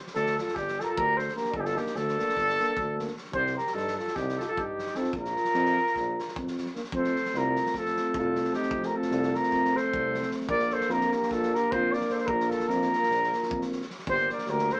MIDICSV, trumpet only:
0, 0, Header, 1, 2, 480
1, 0, Start_track
1, 0, Key_signature, -2, "major"
1, 0, Tempo, 397878
1, 1855, Time_signature, 9, 3, 24, 8
1, 17854, End_track
2, 0, Start_track
2, 0, Title_t, "Trumpet"
2, 0, Program_c, 0, 56
2, 186, Note_on_c, 0, 69, 107
2, 441, Note_off_c, 0, 69, 0
2, 452, Note_on_c, 0, 69, 76
2, 665, Note_on_c, 0, 67, 86
2, 683, Note_off_c, 0, 69, 0
2, 965, Note_on_c, 0, 69, 79
2, 983, Note_off_c, 0, 67, 0
2, 1003, Note_on_c, 0, 70, 71
2, 1021, Note_off_c, 0, 69, 0
2, 1051, Note_on_c, 0, 69, 86
2, 1069, Note_off_c, 0, 70, 0
2, 1158, Note_on_c, 0, 70, 96
2, 1176, Note_off_c, 0, 69, 0
2, 1406, Note_on_c, 0, 72, 81
2, 1425, Note_off_c, 0, 70, 0
2, 1631, Note_off_c, 0, 72, 0
2, 1641, Note_on_c, 0, 70, 71
2, 1867, Note_on_c, 0, 69, 82
2, 1885, Note_off_c, 0, 70, 0
2, 1925, Note_on_c, 0, 67, 67
2, 1943, Note_off_c, 0, 69, 0
2, 1986, Note_on_c, 0, 69, 91
2, 2004, Note_off_c, 0, 67, 0
2, 2137, Note_on_c, 0, 67, 75
2, 2155, Note_off_c, 0, 69, 0
2, 2362, Note_on_c, 0, 69, 110
2, 2380, Note_off_c, 0, 67, 0
2, 3812, Note_off_c, 0, 69, 0
2, 4031, Note_on_c, 0, 72, 93
2, 4282, Note_off_c, 0, 72, 0
2, 4303, Note_on_c, 0, 70, 77
2, 4504, Note_on_c, 0, 69, 98
2, 4522, Note_off_c, 0, 70, 0
2, 4776, Note_off_c, 0, 69, 0
2, 4783, Note_on_c, 0, 69, 69
2, 5008, Note_on_c, 0, 67, 79
2, 5027, Note_off_c, 0, 69, 0
2, 5282, Note_on_c, 0, 69, 68
2, 5300, Note_off_c, 0, 67, 0
2, 5307, Note_on_c, 0, 67, 56
2, 5325, Note_off_c, 0, 69, 0
2, 5401, Note_on_c, 0, 69, 78
2, 5419, Note_off_c, 0, 67, 0
2, 5522, Note_on_c, 0, 67, 81
2, 5540, Note_off_c, 0, 69, 0
2, 5980, Note_on_c, 0, 69, 67
2, 5998, Note_off_c, 0, 67, 0
2, 6182, Note_off_c, 0, 69, 0
2, 6189, Note_on_c, 0, 70, 89
2, 7872, Note_off_c, 0, 70, 0
2, 8399, Note_on_c, 0, 72, 90
2, 8893, Note_on_c, 0, 70, 88
2, 8912, Note_off_c, 0, 72, 0
2, 9361, Note_off_c, 0, 70, 0
2, 9368, Note_on_c, 0, 69, 84
2, 9812, Note_off_c, 0, 69, 0
2, 9865, Note_on_c, 0, 69, 81
2, 10278, Note_off_c, 0, 69, 0
2, 10304, Note_on_c, 0, 67, 83
2, 10682, Note_on_c, 0, 70, 63
2, 10700, Note_off_c, 0, 67, 0
2, 10805, Note_on_c, 0, 69, 74
2, 10824, Note_off_c, 0, 70, 0
2, 11276, Note_on_c, 0, 70, 87
2, 11294, Note_off_c, 0, 69, 0
2, 11776, Note_on_c, 0, 72, 94
2, 11794, Note_off_c, 0, 70, 0
2, 12454, Note_off_c, 0, 72, 0
2, 12667, Note_on_c, 0, 74, 105
2, 12943, Note_on_c, 0, 72, 86
2, 12961, Note_off_c, 0, 74, 0
2, 13161, Note_on_c, 0, 70, 100
2, 13179, Note_off_c, 0, 72, 0
2, 13424, Note_off_c, 0, 70, 0
2, 13431, Note_on_c, 0, 70, 73
2, 13636, Note_on_c, 0, 69, 91
2, 13655, Note_off_c, 0, 70, 0
2, 13920, Note_on_c, 0, 70, 84
2, 13938, Note_off_c, 0, 69, 0
2, 14129, Note_on_c, 0, 72, 96
2, 14148, Note_off_c, 0, 70, 0
2, 14382, Note_on_c, 0, 74, 80
2, 14400, Note_off_c, 0, 72, 0
2, 14607, Note_on_c, 0, 72, 77
2, 14625, Note_off_c, 0, 74, 0
2, 14642, Note_on_c, 0, 74, 76
2, 14660, Note_off_c, 0, 72, 0
2, 14694, Note_on_c, 0, 72, 79
2, 14712, Note_off_c, 0, 74, 0
2, 14806, Note_on_c, 0, 70, 86
2, 14824, Note_off_c, 0, 72, 0
2, 15081, Note_on_c, 0, 69, 70
2, 15099, Note_off_c, 0, 70, 0
2, 15297, Note_on_c, 0, 70, 85
2, 15315, Note_off_c, 0, 69, 0
2, 16444, Note_off_c, 0, 70, 0
2, 17013, Note_on_c, 0, 72, 114
2, 17248, Note_off_c, 0, 72, 0
2, 17277, Note_on_c, 0, 74, 77
2, 17497, Note_on_c, 0, 70, 97
2, 17515, Note_off_c, 0, 74, 0
2, 17763, Note_on_c, 0, 72, 86
2, 17781, Note_off_c, 0, 70, 0
2, 17854, Note_off_c, 0, 72, 0
2, 17854, End_track
0, 0, End_of_file